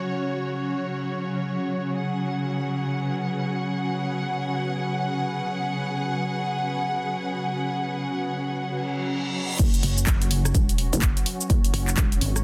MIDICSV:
0, 0, Header, 1, 7, 480
1, 0, Start_track
1, 0, Tempo, 500000
1, 11941, End_track
2, 0, Start_track
2, 0, Title_t, "Ambient pad"
2, 0, Program_c, 0, 92
2, 0, Note_on_c, 0, 61, 88
2, 0, Note_on_c, 0, 66, 92
2, 0, Note_on_c, 0, 73, 88
2, 0, Note_on_c, 0, 78, 90
2, 1650, Note_on_c, 0, 71, 95
2, 1808, Note_off_c, 0, 73, 0
2, 9198, Note_off_c, 0, 61, 0
2, 9209, Note_off_c, 0, 66, 0
2, 9210, Note_off_c, 0, 78, 0
2, 9210, Note_on_c, 0, 61, 98
2, 9414, Note_on_c, 0, 66, 80
2, 9595, Note_on_c, 0, 78, 77
2, 9690, Note_on_c, 0, 73, 87
2, 10761, Note_off_c, 0, 71, 0
2, 11941, Note_off_c, 0, 61, 0
2, 11941, Note_off_c, 0, 66, 0
2, 11941, Note_off_c, 0, 73, 0
2, 11941, Note_off_c, 0, 78, 0
2, 11941, End_track
3, 0, Start_track
3, 0, Title_t, "String section"
3, 0, Program_c, 1, 48
3, 0, Note_on_c, 1, 49, 72
3, 0, Note_on_c, 1, 54, 69
3, 0, Note_on_c, 1, 66, 71
3, 0, Note_on_c, 1, 73, 84
3, 1857, Note_off_c, 1, 66, 0
3, 1885, Note_off_c, 1, 73, 0
3, 1896, Note_on_c, 1, 68, 71
3, 1896, Note_on_c, 1, 78, 84
3, 9171, Note_off_c, 1, 49, 0
3, 9171, Note_off_c, 1, 54, 0
3, 9172, Note_off_c, 1, 68, 0
3, 9199, Note_off_c, 1, 78, 0
3, 9209, Note_on_c, 1, 54, 80
3, 9209, Note_on_c, 1, 61, 75
3, 9209, Note_on_c, 1, 66, 90
3, 11941, Note_off_c, 1, 54, 0
3, 11941, Note_off_c, 1, 61, 0
3, 11941, Note_off_c, 1, 66, 0
3, 11941, End_track
4, 0, Start_track
4, 0, Title_t, "FM bass"
4, 0, Program_c, 2, 39
4, 9210, Note_on_c, 2, 30, 99
4, 9424, Note_off_c, 2, 30, 0
4, 10124, Note_on_c, 2, 28, 96
4, 10470, Note_off_c, 2, 28, 0
4, 10493, Note_on_c, 2, 30, 94
4, 10796, Note_off_c, 2, 30, 0
4, 11039, Note_on_c, 2, 30, 95
4, 11253, Note_off_c, 2, 30, 0
4, 11496, Note_on_c, 2, 28, 97
4, 11710, Note_off_c, 2, 28, 0
4, 11941, End_track
5, 0, Start_track
5, 0, Title_t, "Wobble bass"
5, 0, Program_c, 3, 39
5, 9438, Note_on_c, 3, 30, 91
5, 9652, Note_off_c, 3, 30, 0
5, 9666, Note_on_c, 3, 30, 97
5, 10109, Note_off_c, 3, 30, 0
5, 11267, Note_on_c, 3, 30, 95
5, 11481, Note_off_c, 3, 30, 0
5, 11724, Note_on_c, 3, 32, 98
5, 11941, Note_off_c, 3, 32, 0
5, 11941, End_track
6, 0, Start_track
6, 0, Title_t, "Reverse cymbal"
6, 0, Program_c, 4, 119
6, 8295, Note_on_c, 4, 60, 69
6, 9209, Note_off_c, 4, 60, 0
6, 11941, End_track
7, 0, Start_track
7, 0, Title_t, "Drums"
7, 9210, Note_on_c, 9, 36, 117
7, 9210, Note_on_c, 9, 42, 79
7, 9210, Note_on_c, 9, 49, 97
7, 9212, Note_on_c, 9, 82, 56
7, 9306, Note_off_c, 9, 36, 0
7, 9306, Note_off_c, 9, 42, 0
7, 9306, Note_off_c, 9, 49, 0
7, 9308, Note_off_c, 9, 82, 0
7, 9350, Note_on_c, 9, 42, 57
7, 9352, Note_on_c, 9, 82, 35
7, 9438, Note_on_c, 9, 46, 105
7, 9446, Note_off_c, 9, 42, 0
7, 9448, Note_off_c, 9, 82, 0
7, 9534, Note_off_c, 9, 46, 0
7, 9581, Note_on_c, 9, 82, 70
7, 9663, Note_on_c, 9, 39, 127
7, 9667, Note_on_c, 9, 36, 118
7, 9667, Note_on_c, 9, 42, 83
7, 9669, Note_off_c, 9, 82, 0
7, 9669, Note_on_c, 9, 82, 57
7, 9759, Note_off_c, 9, 39, 0
7, 9763, Note_off_c, 9, 36, 0
7, 9763, Note_off_c, 9, 42, 0
7, 9765, Note_off_c, 9, 82, 0
7, 9807, Note_on_c, 9, 42, 52
7, 9809, Note_on_c, 9, 82, 33
7, 9895, Note_on_c, 9, 46, 106
7, 9903, Note_off_c, 9, 42, 0
7, 9905, Note_off_c, 9, 82, 0
7, 9991, Note_off_c, 9, 46, 0
7, 10035, Note_on_c, 9, 37, 79
7, 10037, Note_on_c, 9, 82, 68
7, 10124, Note_on_c, 9, 36, 118
7, 10124, Note_on_c, 9, 42, 79
7, 10126, Note_off_c, 9, 82, 0
7, 10126, Note_on_c, 9, 82, 55
7, 10131, Note_off_c, 9, 37, 0
7, 10220, Note_off_c, 9, 36, 0
7, 10220, Note_off_c, 9, 42, 0
7, 10222, Note_off_c, 9, 82, 0
7, 10265, Note_on_c, 9, 42, 57
7, 10267, Note_on_c, 9, 82, 33
7, 10352, Note_on_c, 9, 46, 106
7, 10361, Note_off_c, 9, 42, 0
7, 10363, Note_off_c, 9, 82, 0
7, 10448, Note_off_c, 9, 46, 0
7, 10493, Note_on_c, 9, 42, 41
7, 10495, Note_on_c, 9, 82, 70
7, 10577, Note_on_c, 9, 39, 124
7, 10581, Note_on_c, 9, 36, 124
7, 10582, Note_off_c, 9, 42, 0
7, 10582, Note_on_c, 9, 42, 82
7, 10584, Note_off_c, 9, 82, 0
7, 10584, Note_on_c, 9, 82, 58
7, 10673, Note_off_c, 9, 39, 0
7, 10677, Note_off_c, 9, 36, 0
7, 10678, Note_off_c, 9, 42, 0
7, 10680, Note_off_c, 9, 82, 0
7, 10722, Note_on_c, 9, 42, 53
7, 10724, Note_on_c, 9, 82, 33
7, 10810, Note_on_c, 9, 46, 105
7, 10818, Note_off_c, 9, 42, 0
7, 10820, Note_off_c, 9, 82, 0
7, 10906, Note_off_c, 9, 46, 0
7, 10952, Note_on_c, 9, 82, 67
7, 11039, Note_on_c, 9, 36, 126
7, 11039, Note_on_c, 9, 42, 77
7, 11041, Note_off_c, 9, 82, 0
7, 11041, Note_on_c, 9, 82, 53
7, 11135, Note_off_c, 9, 36, 0
7, 11135, Note_off_c, 9, 42, 0
7, 11137, Note_off_c, 9, 82, 0
7, 11179, Note_on_c, 9, 42, 54
7, 11181, Note_on_c, 9, 82, 34
7, 11267, Note_on_c, 9, 46, 108
7, 11275, Note_off_c, 9, 42, 0
7, 11277, Note_off_c, 9, 82, 0
7, 11363, Note_off_c, 9, 46, 0
7, 11403, Note_on_c, 9, 39, 40
7, 11410, Note_on_c, 9, 82, 65
7, 11493, Note_off_c, 9, 39, 0
7, 11493, Note_on_c, 9, 39, 127
7, 11496, Note_on_c, 9, 36, 127
7, 11497, Note_on_c, 9, 42, 82
7, 11499, Note_off_c, 9, 82, 0
7, 11499, Note_on_c, 9, 82, 58
7, 11589, Note_off_c, 9, 39, 0
7, 11592, Note_off_c, 9, 36, 0
7, 11593, Note_off_c, 9, 42, 0
7, 11595, Note_off_c, 9, 82, 0
7, 11636, Note_on_c, 9, 42, 53
7, 11638, Note_on_c, 9, 82, 33
7, 11725, Note_on_c, 9, 46, 110
7, 11732, Note_off_c, 9, 42, 0
7, 11734, Note_off_c, 9, 82, 0
7, 11821, Note_off_c, 9, 46, 0
7, 11865, Note_on_c, 9, 37, 74
7, 11867, Note_on_c, 9, 82, 68
7, 11941, Note_off_c, 9, 37, 0
7, 11941, Note_off_c, 9, 82, 0
7, 11941, End_track
0, 0, End_of_file